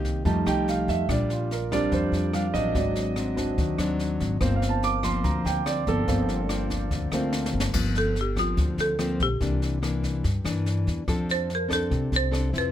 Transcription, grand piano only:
Already playing: D#3 A#3
0.25 G3 A3 D#4 A5
0.47 G5
0.69 F5
0.89 E5
1.12 D5
1.32 F4
1.52 A#4
1.71 G3 C4 D4 D5
1.94 C5
2.34 F5
2.54 D#5
2.75 F#3 C4 D5
3.36 F#3 C4 D4
4.41 F3 A#3 C4 C5
4.56 F5
4.69 A5
4.84 D6
5.04 C6
5.24 A#5
5.46 G5
5.67 D5
5.89 A4
6.07 F3 A#3 C4
7.13 F3 A3 A#3 C4

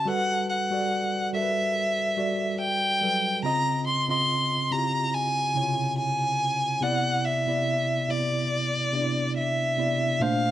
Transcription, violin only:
0.08 F#5
0.50 F#5
1.34 E5
2.61 G5
3.45 A#5
3.87 C6
4.10 C6
4.72 A#5
5.14 G#5
5.98 G#5
6.83 F#5
7.25 E5
8.10 D5
9.37 E5
10.21 F5

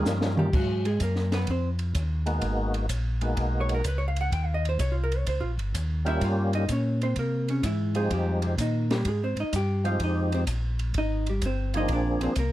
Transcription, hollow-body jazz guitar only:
0.08 F3 F4
0.39 G3 G4
0.55 F#3 F#4
0.86 G#3 G#4
1.02 A#3 A#4
1.34 B3 B4
1.50 C4 C5
3.61 C#5
3.74 A#4
3.87 B4
3.98 C#5
4.08 F5
4.21 F#5
4.33 G5
4.46 F5
4.54 D#5
4.69 C5
4.80 C#5
4.92 F4
5.04 A#4
5.18 C#5
5.28 C5
5.40 F4
6.08 E4 E5
6.24 F4 F5
6.55 D#4 D#5
6.72 C#4 C#5
7.03 C4 C5
7.18 A#3 A#4
7.50 C#3 C#4
7.65 E3 E4
7.96 G#3 G#4
8.13 G3 G4
8.44 C3 C4
8.60 D#3 D#4
8.91 G3 G4
9.08 G#3 G#4
9.23 C4 C5
9.40 D#4 D#5
9.56 G4 G5
9.86 F4 F5
10.03 D#4 D#5
10.34 C4 C5
10.98 D#4 D#5
11.29 G3 G4
11.45 C4 C5
11.77 D#4 D#5
11.93 D4 D5
12.23 C4 C5
12.39 A#3 A#4

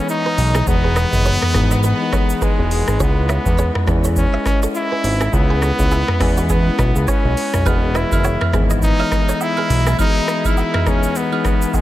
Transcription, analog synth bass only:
0.38 B1
0.67 E1
1.13 F#1
1.54 G#1
2.59 E1
2.88 G#1
3.00 C#2
3.46 E2
3.87 E2
5.04 G#1
5.33 C#2
5.79 C#2
6.20 E2
6.79 B1
6.96 C#2
7.25 B1
7.54 B1
7.66 E1
8.12 F#1
8.53 G#1
9.70 B1

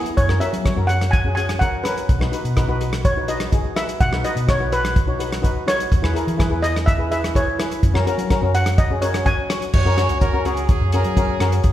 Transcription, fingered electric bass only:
0.17 F#2
0.53 F#3
0.77 F#2
2.09 B1
2.44 B2
2.69 B1
4.00 B1
4.36 B2
4.59 B1
5.91 E2
6.27 E3
6.51 E2
7.83 F#2
8.18 F#3
8.42 F#2
9.74 F#2
10.09 C#2
10.45 C#2
10.81 F#2
11.05 F#3
11.40 F#2
11.64 F#2

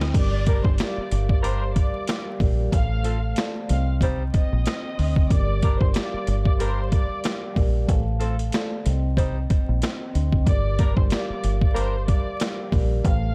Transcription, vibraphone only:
Already playing: C4 C5 D#5 G5
0.13 G3 G4 A#4 D5
0.77 G3 G4 A#4 E5
0.87 F5
2.38 G3 G4 A#4 D5
2.71 A3 A4 C5 F5
3.35 A3 A4 C5 D5
3.69 C4 C5 D#5
4.96 C4 C5 D#5 G5
5.29 G3 G4 A#4 D5
5.94 G3 G4 A#4 E5
6.03 F5
7.54 G3 G4 A#4 D5
7.87 A3 A4 C5 F5
8.51 A3 A4 C5 D5
8.85 C4 C5 D#5 G5
10.11 C4 C5 D#5 G5
10.45 G3 G4 A#4 D5
11.09 G3 G4 A#4 E5
11.19 F5
12.70 G3 G4 A#4 D5
13.03 A3 A4 C5 F5

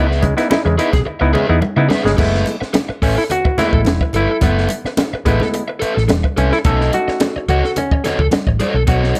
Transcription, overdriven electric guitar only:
Already playing: G4 A#4 E5
0.06 G#4 B4
0.38 muted overdriven electric guitar stroke
0.51 muted overdriven electric guitar stroke
0.66 muted overdriven electric guitar stroke
0.78 G#4 B4 E5
0.93 muted overdriven electric guitar stroke
1.05 muted overdriven electric guitar stroke
1.20 muted overdriven electric guitar stroke
1.33 G#4 B4 E5
1.48 muted overdriven electric guitar stroke
1.62 muted overdriven electric guitar stroke
1.76 muted overdriven electric guitar stroke
1.89 G#4 B4 E5
2.04 muted overdriven electric guitar stroke
2.17 A4 B4 E5
2.61 muted overdriven electric guitar stroke
2.73 muted overdriven electric guitar stroke
2.89 muted overdriven electric guitar stroke
3.02 A4 B4 E5
3.17 muted overdriven electric guitar stroke
3.30 muted overdriven electric guitar stroke
3.45 muted overdriven electric guitar stroke
3.58 A4 B4 E5
3.73 muted overdriven electric guitar stroke
3.87 muted overdriven electric guitar stroke
4.01 muted overdriven electric guitar stroke
4.14 A4 B4 E5
4.30 muted overdriven electric guitar stroke
4.42 A4 B4 E5
4.86 muted overdriven electric guitar stroke
4.99 muted overdriven electric guitar stroke
5.14 muted overdriven electric guitar stroke
5.26 A4 B4 E5
5.42 muted overdriven electric guitar stroke
5.54 muted overdriven electric guitar stroke
5.68 muted overdriven electric guitar stroke
5.80 A4 B4 E5
5.95 muted overdriven electric guitar stroke
6.08 muted overdriven electric guitar stroke
6.24 muted overdriven electric guitar stroke
6.37 A4 B4 E5
6.51 muted overdriven electric guitar stroke
6.65 A4 C#5 D#5
7.08 muted overdriven electric guitar stroke
7.21 muted overdriven electric guitar stroke
7.36 muted overdriven electric guitar stroke
7.49 A4 C#5 D#5
7.64 muted overdriven electric guitar stroke
7.77 muted overdriven electric guitar stroke
7.92 muted overdriven electric guitar stroke
8.04 A4 C#5 D#5
8.20 muted overdriven electric guitar stroke
8.33 muted overdriven electric guitar stroke
8.47 muted overdriven electric guitar stroke
8.60 A4 C#5 D#5
8.75 muted overdriven electric guitar stroke
8.87 A4 C#5 D#5

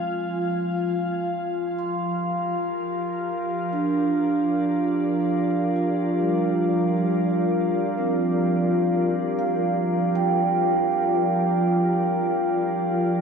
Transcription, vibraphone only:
1.79 C6
3.73 D4
5.76 F4
6.21 G3
6.98 G3
7.98 C4
9.39 F5
10.15 G5

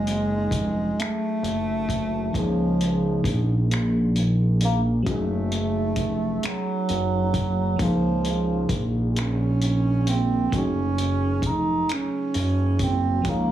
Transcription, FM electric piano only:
Already playing: F#3 C#4 D#4 G#4
2.31 D#3 A#3
2.35 F3 C#4 D#4 G#4
5.03 F#3 A3
5.07 C#4 D#4 G#4
7.76 F3 A#3
7.81 C#3 D#4 G#4
10.50 C#3 F#3 A3
10.56 D#4 G#4
13.22 F3 A#3 C#4
13.28 D#4 G#4

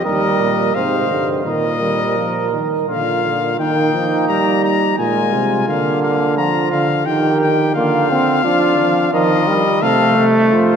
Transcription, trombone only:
0.06 G3
0.76 C3
1.11 D3
1.46 D#3
1.82 G3
2.17 F3
2.53 D#3
2.89 D3
3.24 D3
3.59 A#3
4.99 G#3
5.69 A#3
6.38 F3
7.08 D#3
7.76 A#3
8.11 C4
8.45 D4
9.14 F3
9.48 G3
9.83 A3

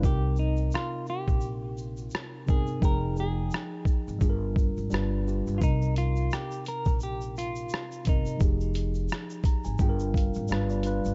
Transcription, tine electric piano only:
0.01 C3 C4 D#4
0.05 A#4
2.47 C3 C4 D#4 A#4
2.80 F3 D#4 G#4 G5
4.19 G3 D4 F4 G#4
4.30 A#4
4.90 G3 D4 F4 B4
5.24 G3 D4 F4 G4
5.60 C3 C4 D#4 A#4
8.05 C3 C4 D#4 A#4
8.37 F3 D#4 G4
8.41 G#4
9.46 A#5
9.65 G#5
9.79 G3 D4 F4 G#4 G5
9.89 A#4
10.15 F5
10.49 G3 D4 F4 F5
10.53 B4
10.70 D5
10.83 G3 D4 F4 B4

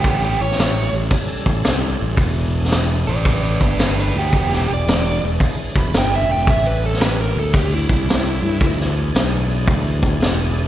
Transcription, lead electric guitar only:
0.07 B3 G4
0.24 B3 G4
0.41 C#5
3.07 B4 D5
3.26 B4 D5
3.43 B4 D5
3.62 D4 B4
3.80 D4 B4
4.00 D4 B4
4.18 B3 G4
4.35 B3 G4
4.55 B3 G4
4.74 D5
5.79 B5
5.98 G5
6.16 E5
6.32 G5
6.50 E5
6.67 B4
6.86 A4
7.03 B4
7.21 A#4
7.40 A4
7.54 G4
7.74 E4

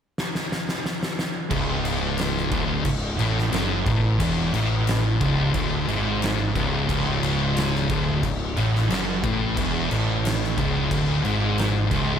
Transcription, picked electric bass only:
1.51 C#1
2.51 D1
2.85 C#1
3.19 A1
3.53 F#1
3.87 A1
4.21 E1
4.54 A1
5.21 C#1
5.55 D1
5.88 G#1
6.56 C#1
6.90 C#1
7.90 D1
8.23 C#1
8.58 A1
8.91 F#1
9.24 A1
9.57 E1
9.92 A1
10.58 C#1
10.91 D1
11.25 G#1
11.92 C#1

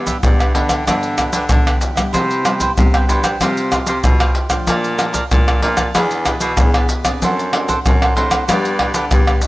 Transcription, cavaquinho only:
0.06 D4 G4 B4 E5
0.39 G4 B4 E5
0.54 D4 G4 B4 E5
0.70 G4 B4 E5
0.87 D4 G4 B4 E5
1.19 D4 G4 B4 E5
1.34 D4 G4 B4 E5
1.67 G4 B4 E5
1.96 G4 B4 E5
2.13 E4 B4 C5 G5
2.44 E4 B4 C5 G5
2.61 E4 B4 C5 G5
2.95 B4 C5 G5
3.09 E4 B4 C5 G5
3.24 B4 C5 G5
3.41 F4 G4 C5 F5
3.73 F4 G4 C5 F5
3.88 F4 G4 C5 F5
4.21 G4 C5 F5
4.50 G4 C5 F5
4.68 A#4 D5 F5 A5
4.97 A#4 D5 F5 A5
5.13 A#4 D5 F5 A5
5.48 D5 F5 A5
5.62 A#4 D5 F5 A5
5.78 D5 F5 A5
5.95 E4 G#4 B4 D5
6.26 E4 G#4 B4 D5
6.42 E4 G#4 B4 D5
6.75 G#4 B4 D5
7.04 G#4 B4 D5
7.23 D4 A4 C5 F#5
7.53 D4 A4 C5 F#5
7.68 D4 A4 C5 F#5
8.02 A4 C5 F#5
8.16 D4 A4 C5 F#5
8.31 A4 C5 F#5
8.48 D4 G4 B4 D5
8.80 D4 G4 B4 D5
8.95 D4 G4 B4 D5
9.29 G4 B4 D5

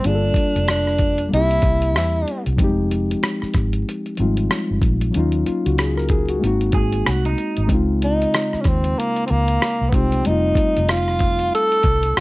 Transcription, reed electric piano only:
0.00 G3 A#3 D4
0.06 F4 G#4
0.15 A4
1.28 G3 A#3 C4
1.34 D#4 G4
1.41 E4
2.56 F3 G3 C4
2.62 G#3 D#4 G4
4.17 F3 G3 C4 D#4
4.21 G#3 F4
5.11 F#3 A#3
5.15 C#4 D#4
5.19 F4
5.47 F4
5.66 F#4
5.79 G#4
5.97 A#4
6.11 G#4
6.29 F#4
6.39 G#3 A#3 C4
6.45 D#4 F#4
7.66 G#3 C4
7.70 C#3 D#4
7.74 F4
9.92 G#3 C4 D#4 F4
9.96 G4
10.22 G3 A3
10.26 C4 D#4 F4

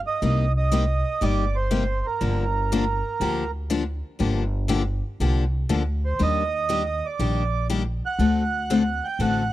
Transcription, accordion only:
0.07 D#5
0.58 D#5
1.23 D5
1.56 C5
2.06 A#4
6.05 C5
6.23 D#5
7.06 D5
8.06 F#5
9.04 G5
9.22 F#5

